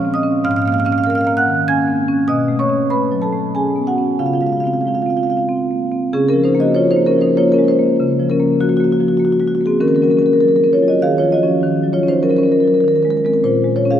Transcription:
Already playing: A#2 C#4 F5 F6
0.05 C4
0.14 D#5 D#6
0.23 C#4
0.44 G#2 F5 F6
0.51 F5 F6
0.56 F5 F6
0.62 A#3 F5 F6
0.68 F6
0.72 F5 F6
0.78 F5 F6
0.85 C#4 F5 F6
0.92 F5 F6
0.98 F5 F6
1.04 A#4 F5 F6
1.10 F5 F6
1.15 F5 F6
1.21 F5 F6
1.27 A#3 F6
1.37 F#5 F#6
1.47 D#3
1.68 C#4 G#5 G#6
1.88 C4
2.08 C#4
2.28 B2 D#5 D#6
2.48 A3
2.59 C#5 C#6
2.69 C#4
2.90 A3 B4 B5
3.12 F#3
3.22 A4 A5
3.33 A3
3.55 C#4 G#4 G#5
3.76 B3
3.87 F#4 F#5
3.98 C#4
4.19 C#3 F4 F5
4.26 F4 F5
4.33 F4 F5
4.41 G#3 F4 F5
4.47 F4 F5
4.52 F5
4.57 F4 F5
4.64 C4 F4 F5
4.73 F4 F5
4.80 F4 F5
4.86 G#3 F4 F5
4.94 F4 F5
5.02 F4 F5
5.06 C4 F4
5.10 F5
5.17 F4 F5
5.23 G#3 F4 F5
5.30 F4 F5
5.37 F4 F5
5.49 C4
5.71 A#3
5.92 C4
6.13 C#3 C#4 G#4
6.29 C#4 A#4
6.33 F3
6.44 D#4 C5
6.55 A#3
6.60 F#4 D#5
6.75 F3 F4 C#5
6.91 D#4 C5
6.96 A#3
7.07 C#4 A#4
7.16 F3
7.21 D#4 C5
7.37 A#3 F4 C#5
7.52 C#4 A#4
7.59 G#3
7.68 F4 C5
7.79 A#3
7.99 C#3
8.19 F3
8.30 C#4 A#4
8.40 A#3
8.60 F3 A#3 F#4
8.69 A#3 F#4
8.77 A#3 F#4
8.84 F#4
8.92 F#4
9.00 F3 F#4
9.08 F#4
9.17 A#3 F#4
9.25 F#4
9.32 F#4
9.40 G#3 F#4
9.47 F#4
9.55 F#4
9.61 A#3
9.66 C4 G#4
9.81 D#3 C#4 A#4
9.88 C#4 A#4
9.95 C#4 A#4
10.02 F#3 C#4 A#4
10.10 C#4 A#4
10.17 C#4 A#4
10.22 C#4 A#4
10.33 A#4
10.41 F#3 A#4
10.49 A#4
10.56 A#4
10.64 C#4 A#4
10.73 F4 C#5
10.83 F#3
10.88 F#4 D#5
11.02 D#3 G#4 F5
11.18 F3 F4 C#5
11.32 F#4 D#5
11.43 F3 C#4
11.63 D#3
11.83 F#3
11.93 F4 C#5
12.03 C#4
12.08 D#4 C5
12.23 F#3 C#4 A#4
12.30 C#4 A#4
12.37 C#4 A#4
12.43 C#4 A#4
12.52 A#4
12.60 F#3 A#4
12.68 A#4
12.74 A#4
12.80 A#4
12.84 D#3 A#4
12.96 A#4
13.03 G#3 A#4
13.10 A#4
13.17 A#4
13.24 G#3 C4 A#4
13.34 A#4
13.44 A#2 F4 C5
13.64 G#3
13.76 F4 C#5
13.86 C#4
13.91 G#4 F5

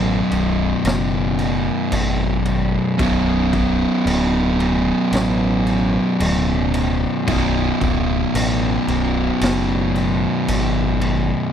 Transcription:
Already playing: A1 B1 F#2 B2
0.31 B0, crash
0.84 F#1, snare, crash
1.39 crash
1.92 G#1, crash
2.45 crash
2.98 B0 B1 F#2 B2, kick, crash
3.53 kick, crash
4.06 D1, crash
4.60 crash
5.12 A1, snare, crash
5.67 crash
6.20 D1, crash
6.74 crash
7.27 B0 B1 F#2 B2, kick, crash
7.81 D1, kick, crash
8.35 A1, crash
8.88 B0, crash
9.41 F#1, snare, crash
9.96 crash
10.48 G#1, crash
11.01 crash

